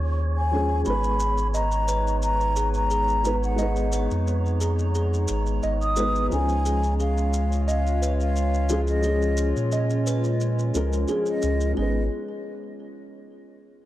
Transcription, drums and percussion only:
0.85 maracas
1.04 maracas
1.20 maracas
1.38 maracas
1.54 maracas
1.71 maracas
1.88 maracas
2.07 maracas
2.22 maracas
2.41 maracas
2.56 maracas
2.74 maracas
2.91 maracas
3.08 maracas
3.25 maracas
3.43 maracas
3.58 maracas
3.76 maracas
3.92 maracas
4.11 maracas
4.27 maracas
4.46 maracas
4.61 maracas
4.79 maracas
4.95 maracas
5.14 maracas
5.28 maracas
5.46 maracas
5.63 maracas
5.81 maracas
5.96 maracas
6.15 maracas
6.32 maracas
6.49 maracas
6.66 maracas
6.84 maracas
7.00 maracas
7.17 maracas
7.33 maracas
7.52 maracas
7.68 maracas
7.87 maracas
8.03 maracas
8.20 maracas
8.36 maracas
8.54 maracas
8.69 maracas
8.87 maracas
9.03 maracas
9.22 maracas
9.37 maracas
9.56 maracas
9.72 maracas
9.90 maracas
10.07 maracas
10.24 maracas
10.41 maracas
10.59 maracas
10.75 maracas
10.93 maracas
11.08 maracas
11.26 maracas
11.42 maracas
11.60 maracas

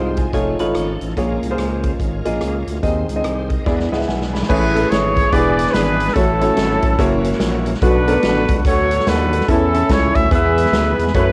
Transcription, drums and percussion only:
0.17 kick, closed hi-hat
0.33 kick, closed hi-hat
0.59 closed hi-hat
0.75 cross-stick, closed hi-hat
1.01 closed hi-hat
1.09 cross-stick
1.17 kick, closed hi-hat
1.43 closed hi-hat
1.58 cross-stick, closed hi-hat
1.83 kick, closed hi-hat
2.00 kick, closed hi-hat
2.25 closed hi-hat
2.34 cross-stick
2.41 cross-stick, closed hi-hat
2.67 closed hi-hat
2.75 cross-stick
2.83 kick, closed hi-hat
3.09 closed hi-hat
3.24 cross-stick, closed hi-hat
3.50 kick, closed hi-hat
3.66 kick, snare
3.79 snare
3.92 snare
4.01 snare
4.08 snare
4.21 snare
4.35 snare
4.42 snare
4.50 kick, crash
4.76 closed hi-hat
4.92 snare, closed hi-hat
5.17 kick, closed hi-hat
5.33 kick, closed hi-hat
5.59 closed hi-hat
5.67 snare
5.74 snare, closed hi-hat
6.00 closed hi-hat
6.08 snare
6.16 kick, closed hi-hat
6.41 closed hi-hat
6.57 snare, closed hi-hat
6.82 kick, closed hi-hat
6.99 kick, closed hi-hat
7.24 closed hi-hat
7.32 snare
7.40 snare, closed hi-hat
7.66 closed hi-hat
7.74 snare
7.82 kick, closed hi-hat
8.07 closed hi-hat
8.22 snare, closed hi-hat
8.48 kick, closed hi-hat
8.65 kick, closed hi-hat
8.91 closed hi-hat
8.99 snare
9.07 snare, closed hi-hat
9.33 closed hi-hat
9.40 snare
9.48 kick, closed hi-hat
9.74 closed hi-hat
9.89 kick, snare, closed hi-hat
10.15 kick, closed hi-hat
10.31 kick, closed hi-hat
10.58 closed hi-hat
10.66 snare
10.73 snare, closed hi-hat
10.99 closed hi-hat
11.07 snare
11.14 kick, closed hi-hat

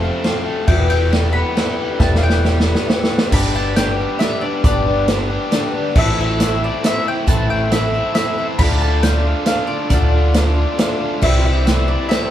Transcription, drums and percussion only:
0.24 snare, ride
0.68 kick, crash
0.90 ride
1.12 snare, ride
1.57 snare, ride
2.00 kick, snare
2.15 snare
2.30 snare
2.45 snare
2.60 snare
2.75 snare
2.90 snare
3.04 snare
3.18 snare
3.32 kick, crash
3.76 snare, closed hi-hat
4.20 snare, closed hi-hat
4.64 kick, closed hi-hat
5.08 snare, closed hi-hat
5.52 snare, closed hi-hat
5.96 kick, crash
6.40 snare, closed hi-hat
6.84 snare, closed hi-hat
7.27 kick, closed hi-hat
7.71 snare, closed hi-hat
8.15 snare, closed hi-hat
8.59 kick, crash
9.03 snare, closed hi-hat
9.46 snare, closed hi-hat
9.90 kick, closed hi-hat
10.34 snare, closed hi-hat
10.79 snare, closed hi-hat
11.22 kick, crash
11.67 snare, closed hi-hat
12.11 snare, closed hi-hat

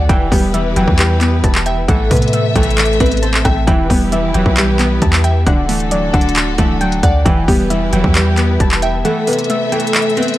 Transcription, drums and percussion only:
0.09 kick, closed hi-hat
0.32 kick, open hi-hat
0.54 closed hi-hat
0.76 closed hi-hat
0.88 kick
0.99 clap, closed hi-hat
1.21 clap, closed hi-hat
1.44 kick, closed hi-hat
1.55 clap
1.66 closed hi-hat
1.88 kick, closed hi-hat
2.11 kick, closed hi-hat, open hi-hat
2.16 closed hi-hat
2.22 closed hi-hat
2.28 closed hi-hat
2.33 closed hi-hat
2.56 kick, closed hi-hat
2.63 closed hi-hat
2.71 closed hi-hat
2.78 clap, closed hi-hat
2.85 closed hi-hat
2.93 closed hi-hat
3.00 kick, closed hi-hat
3.06 closed hi-hat
3.12 closed hi-hat
3.17 closed hi-hat
3.23 closed hi-hat
3.34 clap
3.45 kick, cross-stick, closed hi-hat
3.67 kick, closed hi-hat
3.90 kick, open hi-hat
4.12 closed hi-hat
4.34 closed hi-hat
4.46 kick
4.57 clap, closed hi-hat
4.79 clap, closed hi-hat
5.02 kick, closed hi-hat
5.13 clap
5.24 closed hi-hat
5.47 kick, closed hi-hat
5.69 closed hi-hat, open hi-hat
5.80 closed hi-hat
5.91 closed hi-hat
6.14 kick, closed hi-hat
6.21 closed hi-hat
6.29 closed hi-hat
6.36 clap, closed hi-hat
6.58 kick, closed hi-hat
6.81 closed hi-hat
6.92 closed hi-hat
7.03 kick, closed hi-hat
7.26 kick, closed hi-hat
7.48 kick, open hi-hat
7.70 closed hi-hat
7.93 closed hi-hat
8.04 kick
8.15 clap, closed hi-hat
8.37 clap, closed hi-hat
8.60 kick, closed hi-hat
8.71 clap
8.82 closed hi-hat
9.05 closed hi-hat
9.27 closed hi-hat, open hi-hat
9.33 closed hi-hat
9.39 closed hi-hat
9.44 closed hi-hat
9.50 closed hi-hat
9.72 closed hi-hat
9.80 closed hi-hat
9.87 closed hi-hat
9.94 clap, closed hi-hat
10.02 closed hi-hat
10.10 closed hi-hat
10.17 closed hi-hat
10.23 closed hi-hat
10.28 closed hi-hat
10.34 closed hi-hat

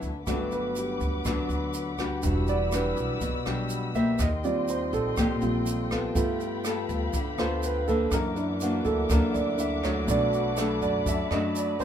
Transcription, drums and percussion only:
0.02 kick, closed hi-hat, shaker
0.27 kick, cross-stick, closed hi-hat, shaker
0.52 closed hi-hat, shaker
0.76 closed hi-hat, shaker
1.00 kick, closed hi-hat, shaker
1.25 kick, cross-stick, closed hi-hat, shaker
1.50 closed hi-hat, shaker
1.74 closed hi-hat, shaker
1.98 kick, cross-stick, closed hi-hat, shaker
2.23 kick, closed hi-hat, shaker
2.47 closed hi-hat, shaker
2.72 cross-stick, closed hi-hat, shaker
2.97 kick, closed hi-hat, shaker
3.21 kick, closed hi-hat, shaker
3.46 cross-stick, closed hi-hat, shaker
3.70 closed hi-hat, shaker
3.95 kick, closed hi-hat, shaker
4.19 kick, cross-stick, closed hi-hat, shaker
4.44 closed hi-hat, shaker
4.68 closed hi-hat, shaker
4.93 kick, closed hi-hat, shaker
5.17 kick, cross-stick, closed hi-hat, shaker
5.41 closed hi-hat, shaker
5.66 closed hi-hat, shaker
5.91 kick, cross-stick, closed hi-hat, shaker
6.15 kick, closed hi-hat, shaker
6.40 closed hi-hat, shaker
6.64 cross-stick, closed hi-hat, shaker
6.89 kick, closed hi-hat, shaker
7.13 kick, closed hi-hat, shaker
7.38 cross-stick, closed hi-hat, shaker
7.63 closed hi-hat, shaker
7.87 kick, closed hi-hat, shaker
8.11 kick, cross-stick, closed hi-hat, shaker
8.36 closed hi-hat, shaker
8.61 closed hi-hat, shaker
8.85 kick, closed hi-hat, shaker
9.09 kick, cross-stick, closed hi-hat, shaker
9.34 closed hi-hat, shaker
9.58 closed hi-hat, shaker
9.83 kick, cross-stick, closed hi-hat, shaker
10.08 kick, closed hi-hat, shaker
10.33 closed hi-hat, shaker
10.57 cross-stick, closed hi-hat, shaker
10.81 kick, closed hi-hat, shaker
11.06 kick, closed hi-hat, shaker
11.31 cross-stick, closed hi-hat, shaker
11.55 closed hi-hat, shaker
11.80 kick, closed hi-hat, shaker

